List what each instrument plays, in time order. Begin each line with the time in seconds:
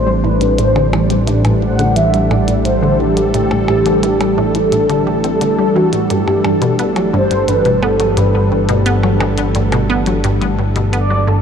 Already playing: analog synth bass A1, analog synth pad E3 G3 A3 C4 D4, soft synth lead C5
0.07 synth arpeggio sound G3
0.24 synth arpeggio sound A2, soft synth lead B4
0.41 synth arpeggio sound A2, closed hi-hat
0.58 synth arpeggio sound A2, soft synth lead C5, closed hi-hat
0.76 synth arpeggio sound D3, percussion blips
0.93 synth arpeggio sound E3, percussion blips
1.02 analog synth pad A4
1.10 synth arpeggio sound G3, closed hi-hat
1.27 synth arpeggio sound A2, closed hi-hat
1.45 synth arpeggio sound A2, closed hi-hat, percussion blips
1.62 synth arpeggio sound A2, soft synth lead F#5
1.79 synth arpeggio sound D3, closed hi-hat
1.96 synth arpeggio sound E3, soft synth lead E5, closed hi-hat
2.14 synth arpeggio sound G3, closed hi-hat
2.31 synth arpeggio sound A2, soft synth lead D5, percussion blips
2.48 synth arpeggio sound A2, closed hi-hat
2.65 synth arpeggio sound A2, soft synth lead C5, closed hi-hat
2.83 synth arpeggio sound D3
2.99 synth arpeggio sound E3, soft synth lead G4
3.17 synth arpeggio sound G3, closed hi-hat
3.34 synth arpeggio sound A2, closed hi-hat
3.51 synth arpeggio sound A2, percussion blips
3.68 synth arpeggio sound A2, percussion blips
3.86 synth arpeggio sound D3, closed hi-hat
4.03 synth arpeggio sound E3, closed hi-hat
4.20 synth arpeggio sound G3, closed hi-hat, percussion blips
4.37 synth arpeggio sound A2, soft synth lead A4
4.55 synth arpeggio sound A2, closed hi-hat
4.72 synth arpeggio sound A2, closed hi-hat
4.89 synth arpeggio sound D3, closed hi-hat
5.07 synth arpeggio sound G3
5.24 synth arpeggio sound C4, closed hi-hat
5.41 synth arpeggio sound D3, soft synth lead A4, closed hi-hat
5.59 synth arpeggio sound G3
5.75 synth arpeggio sound E3, soft synth lead F#4
5.93 synth arpeggio sound A2, closed hi-hat
6.10 analog synth bass G1, synth arpeggio sound G2, soft synth lead G4, closed hi-hat
6.27 synth arpeggio sound G2, percussion blips
6.44 synth arpeggio sound G2, percussion blips
6.62 synth arpeggio sound B2, closed hi-hat
6.79 synth arpeggio sound B3, closed hi-hat
6.96 synth arpeggio sound F#3, closed hi-hat, percussion blips
7.13 synth arpeggio sound G2, soft synth lead C5
7.31 synth arpeggio sound G2, closed hi-hat
7.48 synth arpeggio sound G2, soft synth lead B4, closed hi-hat
7.65 synth arpeggio sound B2, closed hi-hat
7.83 synth arpeggio sound B3, soft synth lead A4, percussion blips
8.00 synth arpeggio sound F#3, closed hi-hat
8.17 synth arpeggio sound G2, soft synth lead B4, closed hi-hat
8.34 synth arpeggio sound G2
8.52 synth arpeggio sound G2
8.69 synth arpeggio sound B2, closed hi-hat
8.86 synth arpeggio sound B3, closed hi-hat
9.03 synth arpeggio sound F#3, percussion blips
9.20 synth arpeggio sound G2, percussion blips
9.38 synth arpeggio sound G2, closed hi-hat
9.55 synth arpeggio sound G2, closed hi-hat
9.72 synth arpeggio sound B2, closed hi-hat, percussion blips
9.90 synth arpeggio sound B3
10.06 synth arpeggio sound F#3, closed hi-hat
10.24 synth arpeggio sound G2, closed hi-hat
10.41 synth arpeggio sound G2, closed hi-hat
10.59 synth arpeggio sound G2
10.76 synth arpeggio sound B2, closed hi-hat
10.93 synth arpeggio sound B3, soft synth lead D5, closed hi-hat
11.10 synth arpeggio sound F#3
11.27 synth arpeggio sound G2, soft synth lead A4